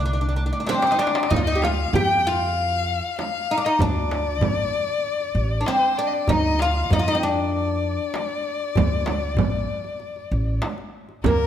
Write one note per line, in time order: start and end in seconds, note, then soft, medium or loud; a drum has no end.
0.00 0.50 C2 medium
0.00 1.38 D2 medium
0.06 0.12 D4 medium
0.06 darbuka ka soft
0.13 0.20 D4 soft
0.21 0.27 D4 soft
0.21 darbuka ka soft
0.29 0.35 D4 soft
0.36 0.43 D4 soft
0.36 darbuka ka soft
0.46 0.51 D4 soft
0.53 0.59 D4 medium
0.60 0.65 D4 soft
0.66 0.91 C4 loud
0.66 0.71 D4 medium
0.66 1.01 C5 medium
0.66 darbuka tek medium
0.66 frame drum medium
0.72 0.80 D4 medium
0.72 darbuka ka medium
0.82 0.86 D4 medium
0.82 darbuka tek medium
0.87 0.91 D4 medium
0.87 darbuka ka medium
0.92 0.99 D#4 medium
0.99 1.30 D4 medium
0.99 1.30 D5 medium
0.99 darbuka tek medium
1.07 darbuka ka medium
1.15 darbuka tek medium
1.23 darbuka ka loud
1.29 1.84 D2 medium
1.29 1.38 D#4 medium
1.29 1.43 D#5 medium
1.29 darbuka dum medium
1.29 frame drum medium
1.36 1.44 F4 medium
1.43 1.64 D#4 medium
1.43 1.63 D#5 medium
1.47 darbuka ka soft
1.55 1.62 G4 medium
1.62 1.95 F4 medium
1.62 1.96 F5 medium
1.62 darbuka tek medium
1.62 frame drum medium
1.93 2.99 F2 medium
1.93 2.26 G4 medium
1.93 2.29 G5 medium
1.93 darbuka dum medium
1.93 frame drum medium
2.27 3.46 F4 medium
2.27 3.18 F5 medium
2.41 darbuka ka soft
2.71 darbuka ka soft
3.19 3.66 F5 medium
3.19 darbuka tek medium
3.19 frame drum medium
3.34 darbuka ka soft
3.51 3.57 D#4 medium
3.58 3.64 D4 medium
3.65 3.81 D#4 medium
3.65 3.82 D#5 medium
3.65 darbuka ka soft
3.79 4.41 D2 medium
3.79 5.59 D4 medium
3.79 5.68 D5 medium
3.79 frame drum medium
3.79 darbuka dum medium
3.96 darbuka ka soft
4.11 darbuka tek medium
4.11 frame drum medium
4.41 4.68 A1 medium
4.41 darbuka dum medium
4.41 frame drum medium
4.89 darbuka ka soft
5.20 darbuka ka soft
5.35 5.62 A1 medium
5.61 5.67 D4 medium
5.66 5.98 C4 medium
5.66 5.99 C5 medium
5.66 darbuka tek medium
5.66 frame drum medium
5.81 darbuka ka soft
5.97 6.27 D4 medium
5.97 6.09 D5 medium
6.07 6.15 D#5 medium
6.12 6.32 D5 medium
6.12 darbuka ka soft
6.28 6.82 D2 loud
6.28 6.61 D#4 medium
6.28 6.62 D#5 medium
6.28 darbuka dum medium
6.28 frame drum medium
6.44 darbuka ka soft
6.59 6.93 F4 medium
6.59 6.93 F5 medium
6.59 darbuka tek medium
6.90 7.96 F2 medium
6.90 6.99 D#4 medium
6.90 7.26 D#5 medium
6.90 darbuka dum medium
6.90 frame drum medium
6.99 7.06 F4 medium
7.08 7.23 D#4 medium
7.15 7.22 C4 medium
7.23 10.59 D4 medium
7.23 10.64 D5 medium
7.37 darbuka ka soft
7.68 darbuka ka soft
8.14 darbuka tek medium
8.14 frame drum medium
8.29 darbuka ka soft
8.76 9.38 D2 loud
8.76 darbuka dum medium
8.76 frame drum loud
8.91 darbuka ka soft
9.06 darbuka tek medium
9.06 frame drum medium
9.37 9.65 A1 loud
9.37 darbuka dum medium
9.37 frame drum medium
9.53 darbuka ka soft
9.84 darbuka ka soft
10.00 darbuka ka soft
10.16 darbuka ka soft
10.31 10.58 A1 medium
10.62 darbuka tek medium
10.62 frame drum medium
10.78 darbuka ka soft
11.09 darbuka ka soft
11.24 11.47 D2 medium
11.24 11.47 A#3 medium
11.24 11.47 A#4 medium
11.24 darbuka dum medium
11.24 frame drum medium